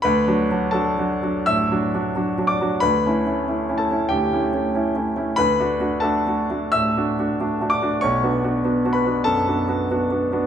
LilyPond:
\new Staff \with { instrumentName = "Grand piano" } { \time 4/4 \key d \major \tempo 4 = 93 << { <b' b''>4 <a' a''>4 <e'' e'''>4. <d'' d'''>8 | <b' b''>4. <a' a''>8 <g' g''>2 | <b' b''>4 <a' a''>4 <e'' e'''>4. <d'' d'''>8 | <cis'' cis'''>4. <b' b''>8 <a' a''>2 | } \\ { \tuplet 3/2 { d,8 <fis d' fis'>8 <fis d' fis'>8 <fis d' fis'>8 <fis d' fis'>8 <fis d' fis'>8 a,8 <fis d' fis'>8 <fis d' fis'>8 <fis d' fis'>8 <fis d' fis'>8 <fis d' fis'>8 } | \tuplet 3/2 { d,8 <a cis' e'>8 <a cis' e'>8 <a cis' e'>8 <a cis' e'>8 <a cis' e'>8 d,8 <a cis' e'>8 <a cis' e'>8 <a cis' e'>8 <a cis' e'>8 <a cis' e'>8 } | \tuplet 3/2 { d,8 <a d' fis'>8 <a d' fis'>8 <a d' fis'>8 <a d' fis'>8 <a d' fis'>8 a,8 <a d' fis'>8 <a d' fis'>8 <a d' fis'>8 <a d' fis'>8 <a d' fis'>8 } | \tuplet 3/2 { b,,8 <b d' fis'>8 <b d' fis'>8 <b d' fis'>8 <b d' fis'>8 <b d' fis'>8 fis,8 <b d' fis'>8 <b d' fis'>8 <b d' fis'>8 <b d' fis'>8 <b d' fis'>8 } | } >> }